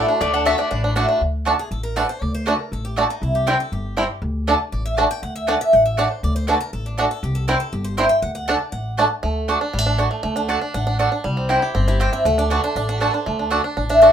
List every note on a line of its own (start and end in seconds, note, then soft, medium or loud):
0.00 0.19 A2 medium
0.00 0.21 A3 medium
0.00 0.09 D4 medium
0.00 0.17 E4 medium
0.00 0.22 A5 medium
0.08 0.34 D4 medium
0.08 0.21 E4 medium
0.08 0.20 F#4 medium
0.21 0.52 D2 medium
0.21 0.44 D3 loud
0.21 0.56 A3 medium
0.21 0.33 A3 medium
0.21 0.33 D5 medium
0.34 0.45 D4 medium
0.34 0.47 F#5 medium
0.45 0.70 D3 medium
0.45 0.55 A3 medium
0.45 0.57 A3 medium
0.45 0.70 A3 medium
0.45 0.58 D4 medium
0.45 0.70 D4 medium
0.45 0.55 F#4 medium
0.45 0.71 F#4 medium
0.45 0.55 D5 medium
0.45 0.58 E5 medium
0.45 0.55 A5 loud
0.58 1.05 A3 medium
0.58 0.70 D4 medium
0.58 1.06 D5 medium
0.71 1.03 A1 medium
0.71 1.19 A2 medium
0.71 0.83 D4 medium
0.84 0.95 D4 medium
0.95 1.20 D3 medium
0.95 1.05 A3 medium
0.95 1.20 A3 loud
0.95 1.07 D4 medium
0.95 1.20 D4 medium
0.95 1.05 F#4 medium
0.95 1.20 F#4 loud
0.95 1.06 D5 medium
0.95 1.06 A5 medium
1.09 1.21 D4 medium
1.21 1.53 D2 medium
1.45 1.55 A3 medium
1.45 1.52 A3 medium
1.45 1.53 D4 medium
1.45 1.55 F#4 medium
1.45 1.55 D5 loud
1.45 1.56 A5 loud
1.59 1.71 G#4 medium
1.71 2.03 A1 medium
1.71 1.83 A4 medium
1.83 1.96 A#4 medium
1.96 2.06 A3 medium
1.96 2.02 A3 medium
1.96 2.03 D4 medium
1.96 2.06 F#4 medium
1.96 2.09 B4 medium
1.96 2.06 D5 medium
1.96 2.06 A5 medium
2.09 2.22 C5 medium
2.22 2.53 D2 medium
2.22 2.34 D5 loud
2.34 2.48 C5 loud
2.46 2.56 A3 medium
2.46 2.53 A3 medium
2.46 2.53 D4 medium
2.46 2.56 F#4 medium
2.46 2.60 B4 medium
2.46 2.56 D5 medium
2.46 2.56 A5 medium
2.60 2.72 A#4 medium
2.72 3.03 A1 medium
2.72 2.85 A4 medium
2.85 2.98 G4 medium
2.96 3.06 A3 medium
2.96 3.03 A3 medium
2.96 3.03 D4 medium
2.96 3.06 F#4 medium
2.96 3.10 F#4 medium
2.96 3.06 D5 medium
2.96 3.06 A5 medium
3.10 3.22 D#4 medium
3.22 3.53 C2 medium
3.22 3.35 E4 medium
3.35 3.47 G4 medium
3.47 3.53 G3 medium
3.47 3.56 C4 medium
3.47 3.53 C4 medium
3.47 3.56 E4 medium
3.47 3.53 E4 medium
3.47 3.60 B4 medium
3.47 3.57 C5 loud
3.47 3.57 G5 loud
3.60 3.72 A4 medium
3.72 4.04 G1 medium
3.72 4.19 G4 medium
3.97 4.03 G3 medium
3.97 4.06 C4 medium
3.97 4.03 C4 medium
3.97 4.06 E4 medium
3.97 4.03 E4 medium
3.97 4.07 C5 medium
3.97 4.07 G5 medium
4.22 4.53 D2 loud
4.47 4.57 A3 medium
4.47 4.53 A3 medium
4.47 4.54 D4 medium
4.47 4.57 F#4 medium
4.47 4.57 D5 loud
4.47 4.57 A5 loud
4.72 5.04 A1 medium
4.72 4.85 D5 medium
4.85 4.97 E5 loud
4.97 5.06 A3 medium
4.97 5.04 A3 medium
4.97 5.04 D4 medium
4.97 5.07 F#4 medium
4.97 5.07 D5 medium
4.97 5.10 F#5 medium
4.97 5.07 A5 medium
5.11 5.22 G5 loud
5.23 5.54 D2 medium
5.23 5.35 F#5 medium
5.36 5.48 E5 loud
5.47 5.57 A3 medium
5.47 5.54 A3 medium
5.47 5.54 D4 medium
5.47 5.57 F#4 loud
5.47 5.57 D5 medium
5.47 5.60 D5 medium
5.47 5.57 A5 loud
5.61 5.73 E5 loud
5.73 6.05 A1 medium
5.73 5.85 F#5 loud
5.86 5.98 E5 medium
5.97 6.07 A3 medium
5.97 6.04 A3 medium
5.97 6.04 D4 medium
5.97 6.07 F#4 medium
5.97 6.07 D5 medium
5.97 6.11 D5 medium
5.97 6.07 A5 loud
6.11 6.23 C5 loud
6.23 6.55 D2 medium
6.23 6.35 D5 medium
6.36 6.48 C5 loud
6.47 6.57 A3 medium
6.47 6.54 A3 medium
6.47 6.54 D4 medium
6.47 6.57 F#4 medium
6.47 6.60 B4 medium
6.47 6.57 D5 medium
6.47 6.57 A5 medium
6.60 6.73 A#4 loud
6.73 7.04 A1 medium
6.73 6.85 A4 medium
6.86 6.98 D4 medium
6.98 7.07 A3 medium
6.98 7.04 A3 medium
6.98 7.04 D4 medium
6.98 7.10 F#4 medium
6.98 7.07 F#4 loud
6.98 7.07 D5 medium
6.98 7.08 A5 medium
7.11 7.23 A4 loud
7.23 7.54 C2 medium
7.23 7.36 G4 medium
7.35 7.47 A4 medium
7.48 7.54 G3 medium
7.48 7.57 C4 medium
7.48 7.54 C4 medium
7.48 7.57 E4 loud
7.48 7.54 E4 medium
7.48 7.59 B4 medium
7.48 7.57 C5 medium
7.48 7.57 G5 loud
7.60 7.72 A4 medium
7.72 8.04 G1 medium
7.72 7.85 G4 medium
7.84 7.97 C5 medium
7.97 8.04 G3 medium
7.97 8.07 C4 medium
7.97 8.04 C4 medium
7.97 8.07 E4 medium
7.97 8.04 E4 medium
7.97 8.07 C5 loud
7.97 8.09 E5 medium
7.97 8.07 G5 loud
8.09 8.22 G5 loud
8.22 8.54 D2 medium
8.22 8.30 F#5 medium
8.35 8.47 F#5 medium
8.48 8.57 A3 medium
8.48 8.54 A3 medium
8.48 8.54 D4 medium
8.48 8.57 F#4 loud
8.48 8.71 D5 medium
8.48 8.57 D5 medium
8.48 8.57 A5 loud
8.72 9.04 A1 medium
8.72 9.08 F#5 medium
8.97 9.07 A3 medium
8.97 9.04 A3 medium
8.97 9.04 D4 medium
8.97 9.07 F#4 medium
8.97 9.07 D5 medium
8.97 9.07 A5 medium
9.23 9.55 D2 medium
9.23 9.58 A3 medium
9.48 9.57 A3 medium
9.48 9.60 D4 medium
9.48 9.58 F#4 medium
9.48 9.58 D5 loud
9.48 9.58 A5 loud
9.61 9.85 D4 medium
9.73 10.05 A1 medium
9.73 9.79 G3 medium
9.79 9.99 A3 medium
9.86 9.97 D4 medium
9.98 10.07 A3 medium
9.98 10.34 D4 medium
9.98 10.08 F#4 medium
9.98 10.08 D5 medium
9.98 10.08 A5 medium
10.11 10.22 A3 medium
10.23 10.55 D2 medium
10.23 10.59 A3 medium
10.36 10.47 D4 medium
10.36 10.49 F#5 loud
10.48 10.58 A3 medium
10.48 10.60 D4 medium
10.48 10.58 F#4 loud
10.48 10.58 D5 medium
10.48 10.73 D5 medium
10.48 10.58 A5 loud
10.62 10.73 D4 medium
10.74 11.06 A1 medium
10.74 10.86 D4 medium
10.74 11.09 F#5 medium
10.87 10.98 D4 medium
10.99 11.08 A3 medium
10.99 11.11 D4 medium
10.99 11.08 F#4 medium
10.99 11.09 D5 loud
10.99 11.09 A5 loud
11.12 11.24 D4 medium
11.24 11.56 C2 medium
11.24 11.60 G3 medium
11.37 11.72 C4 medium
11.49 11.58 C4 medium
11.49 11.85 E4 medium
11.49 11.59 E4 medium
11.49 11.59 C5 loud
11.49 11.59 G5 loud
11.62 11.98 G4 medium
11.75 12.07 G1 medium
11.75 12.10 C4 medium
11.88 12.23 E4 medium
11.88 12.00 G4 medium
12.00 12.09 C4 medium
12.00 12.09 E4 medium
12.00 12.25 G4 medium
12.00 12.09 C5 medium
12.00 12.13 C5 medium
12.00 12.10 G5 loud
12.13 12.25 C4 medium
12.13 12.25 E5 loud
12.25 12.57 D2 loud
12.25 13.26 A3 medium
12.25 12.38 F#5 loud
12.38 12.51 D4 medium
12.38 12.51 D5 loud
12.50 12.60 A3 medium
12.50 12.64 D4 medium
12.50 12.60 F#4 loud
12.50 12.63 B4 medium
12.50 12.60 D5 medium
12.50 12.60 A5 medium
12.64 12.77 D4 medium
12.64 12.76 C5 loud
12.76 13.07 A1 medium
12.76 12.89 D4 medium
12.76 12.88 D5 medium
12.89 13.01 D4 medium
12.89 13.01 F#4 medium
13.01 13.10 A3 medium
13.01 13.13 D4 medium
13.01 13.10 F#4 medium
13.01 13.14 A4 medium
13.01 13.10 D5 medium
13.01 13.11 A5 medium
13.14 13.38 D4 medium
13.14 13.52 C5 loud
13.26 13.58 D2 medium
13.26 13.62 A3 medium
13.39 13.50 D4 medium
13.50 13.60 A3 loud
13.50 13.63 D4 medium
13.50 13.60 F#4 loud
13.50 13.61 D5 loud
13.50 13.61 A5 medium
13.64 13.76 D4 medium
13.77 14.09 A1 medium
13.77 13.89 D4 medium
13.89 14.01 D4 medium
13.89 14.02 E5 medium
14.01 14.11 A3 medium
14.01 14.12 D4 medium
14.01 14.11 F#4 medium
14.01 14.11 D5 medium
14.01 14.12 F#5 medium
14.01 14.12 A5 loud